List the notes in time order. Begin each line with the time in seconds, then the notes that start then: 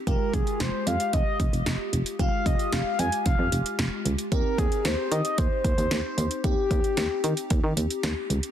0.07 F1 G#3 F4 G4 A#4, kick, closed hi-hat
0.34 F1 G#4, kick, closed hi-hat
0.47 closed hi-hat
0.60 F1 C5, snare, closed hi-hat
0.87 F2 F5, closed hi-hat
1.00 closed hi-hat
1.13 F1 D#5, kick, closed hi-hat
1.40 F1, kick, closed hi-hat
1.53 F1, closed hi-hat
1.66 F1, snare, closed hi-hat
1.93 F1, closed hi-hat
2.06 closed hi-hat
2.19 F1 G#3 F4 G4 F5, kick, closed hi-hat
2.46 F1 D#5, kick, closed hi-hat
2.59 closed hi-hat
2.72 F1 F5, snare, closed hi-hat
2.99 F2 G#5, closed hi-hat
3.12 closed hi-hat
3.25 F1 F5, kick, closed hi-hat
3.39 F2
3.52 F1, closed hi-hat
3.66 closed hi-hat
3.79 F1, snare, closed hi-hat
4.05 C#2, closed hi-hat
4.18 closed hi-hat
4.32 D#2 C4 D#4 G4 A#4, kick, closed hi-hat
4.58 D#2 G#4, kick, closed hi-hat
4.72 closed hi-hat
4.85 D#2 C5, snare, closed hi-hat
5.12 D#3 D#5, closed hi-hat
5.25 closed hi-hat
5.38 D#2 C5, kick, closed hi-hat
5.64 D#2, kick, closed hi-hat
5.78 D#2, closed hi-hat
5.91 D#2, snare, closed hi-hat
6.18 D#2, closed hi-hat
6.31 closed hi-hat
6.44 D#2 C4 D#4 G4, kick, closed hi-hat
6.71 D#2, kick, closed hi-hat
6.84 closed hi-hat
6.97 D#2, snare, closed hi-hat
7.24 D#3, closed hi-hat
7.37 closed hi-hat
7.50 D#2, kick, closed hi-hat
7.64 D#3
7.77 D#2, closed hi-hat
7.90 closed hi-hat
8.03 D#2, snare, closed hi-hat
8.30 C#2, closed hi-hat
8.43 closed hi-hat